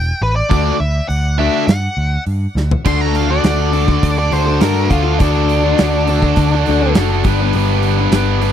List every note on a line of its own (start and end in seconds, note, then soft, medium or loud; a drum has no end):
0.00 0.12 E1 medium
0.00 0.25 G5 loud
0.21 0.41 A1 medium
0.21 0.36 B4 medium
0.36 0.77 D5 medium
0.50 0.70 D2 loud
0.50 0.74 D3 medium
0.50 0.74 A3 medium
0.50 0.74 D4 loud
0.50 0.75 F#4 medium
0.50 kick loud
0.50 open hi-hat soft
0.80 0.99 D2 medium
0.80 1.08 E5 medium
1.09 1.48 D2 medium
1.09 1.37 F#5 loud
1.09 open hi-hat soft
1.39 1.63 D3 medium
1.39 1.63 A3 medium
1.39 1.63 D4 medium
1.39 1.63 F#4 loud
1.39 1.67 E5 medium
1.67 1.87 G2 medium
1.67 2.22 F#5 medium
1.67 snare loud
1.67 open hi-hat medium
1.97 2.16 D2 medium
2.27 2.46 G2 medium
2.27 open hi-hat soft
2.55 2.75 D2 medium
2.55 snare medium
2.71 floor tom medium
2.85 3.38 D2 medium
2.85 3.43 D3 medium
2.85 3.31 D4 medium
2.85 3.30 F#4 medium
2.85 3.29 A4 medium
2.85 3.01 C6 medium
2.85 kick medium
2.85 crash loud
3.01 3.15 A#5 medium
3.15 3.30 F5 medium
3.15 open hi-hat medium
3.29 3.45 D4 medium
3.29 3.45 F#4 medium
3.29 3.46 A4 medium
3.29 4.15 D5 medium
3.44 3.97 D2 medium
3.44 3.71 D3 medium
3.44 3.73 D4 medium
3.44 3.73 F#4 medium
3.44 3.74 A4 medium
3.44 snare loud
3.44 open hi-hat medium
3.72 4.17 D3 medium
3.72 3.88 D4 medium
3.72 3.86 F#4 medium
3.72 3.87 A4 medium
3.72 open hi-hat medium
3.76 4.61 D3 medium
3.88 muted overdriven electric guitar stroke soft
3.88 kick medium
4.03 4.29 D2 medium
4.03 kick medium
4.03 open hi-hat medium
4.17 4.33 D5 medium
4.17 muted overdriven electric guitar stroke soft
4.31 4.58 D2 medium
4.31 4.59 D3 medium
4.31 4.48 D4 medium
4.31 4.46 F#4 medium
4.31 4.45 A4 medium
4.31 4.61 C5 medium
4.31 open hi-hat medium
4.46 4.61 D4 medium
4.46 4.61 F#4 medium
4.46 4.62 A4 medium
4.60 4.88 G2 medium
4.60 4.88 D3 medium
4.60 4.90 D4 medium
4.60 4.90 F#4 medium
4.60 4.91 A4 medium
4.60 4.90 A#4 medium
4.60 snare loud
4.60 open hi-hat medium
4.89 5.17 D2 medium
4.89 5.18 D3 medium
4.89 5.07 D4 medium
4.89 5.19 F4 medium
4.89 5.05 F#4 medium
4.89 5.04 A4 medium
4.89 kick medium
4.89 open hi-hat medium
5.05 5.21 D4 medium
5.05 5.21 F#4 medium
5.05 5.21 A4 medium
5.20 5.73 D2 medium
5.20 5.76 D3 medium
5.20 6.92 D4 medium
5.20 5.66 D4 medium
5.20 5.63 F#4 medium
5.20 5.62 A4 medium
5.20 kick loud
5.20 open hi-hat medium
5.49 open hi-hat medium
5.64 5.78 D4 medium
5.64 5.79 F#4 medium
5.64 5.79 A4 medium
5.78 6.32 D2 medium
5.78 6.07 D3 medium
5.78 6.09 D4 medium
5.78 6.09 F#4 medium
5.78 6.10 A4 medium
5.78 snare loud
5.78 open hi-hat medium
6.07 6.52 D3 medium
6.07 6.24 D4 medium
6.07 6.23 F#4 medium
6.07 6.22 A4 medium
6.07 open hi-hat medium
6.22 muted overdriven electric guitar stroke medium
6.22 kick medium
6.36 6.63 D2 medium
6.36 kick loud
6.36 open hi-hat medium
6.54 muted overdriven electric guitar stroke soft
6.66 6.94 D2 medium
6.66 6.96 D3 medium
6.66 6.84 D4 medium
6.66 6.83 F#4 medium
6.66 open hi-hat medium
6.70 6.82 A4 medium
6.83 6.98 D4 medium
6.83 6.98 F#4 medium
6.83 6.99 A4 medium
6.95 7.22 F#1 medium
6.95 7.24 D3 loud
6.95 7.27 D4 medium
6.95 snare loud
6.95 open hi-hat medium
7.00 7.25 F#4 loud
7.00 7.26 A4 loud
7.24 7.51 G1 medium
7.24 7.54 G3 medium
7.24 7.43 D4 medium
7.24 kick loud
7.24 open hi-hat medium
7.29 7.42 B3 medium
7.29 7.40 B4 loud
7.40 7.56 B3 medium
7.40 7.55 D4 medium
7.40 7.56 B4 medium
7.53 8.07 G1 medium
7.53 8.13 G3 medium
7.53 7.99 B3 medium
7.53 8.00 D4 medium
7.53 7.97 B4 loud
7.53 open hi-hat medium
7.83 open hi-hat medium
7.97 8.15 B3 medium
7.97 8.13 D4 medium
7.97 8.15 B4 medium
8.12 8.52 G1 medium
8.12 8.41 G3 medium
8.12 8.43 B3 loud
8.12 8.42 D4 loud
8.12 snare loud
8.12 open hi-hat medium
8.16 8.44 B4 loud
8.42 8.52 G3 medium
8.42 8.52 B3 medium
8.42 8.52 D4 medium
8.42 8.52 B4 medium
8.42 open hi-hat medium